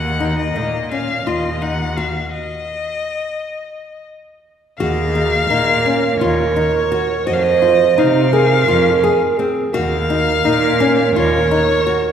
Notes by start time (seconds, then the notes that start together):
Already playing: D#2 F#5
0.20 D#4
0.38 D#5
0.55 A#2 D#4
0.91 C#4 F5
1.26 D#2 F4 D#5
1.62 D#4 F#5
1.97 F#4 F5
2.32 D#5
4.78 D#2 F#4 G#4 F5
5.15 D#4
5.50 A#2 D#4 A#4
5.86 C#4
6.19 D#2 F4 C#5
6.56 D#4
6.92 F#4
7.26 F2 F#4 C5 D#5
7.33 F5
7.42 D#5
7.62 F4
7.98 C3 D#4 F5
8.33 G#4 A#4
8.68 F2 F4
9.04 G#4
9.38 C4 G#4
9.73 D#2 F#4 A#4 F5
10.10 D#4
10.45 A#2 D#4
10.80 C#4
11.15 D#2 F4 C#5
11.51 D#4
11.87 F#4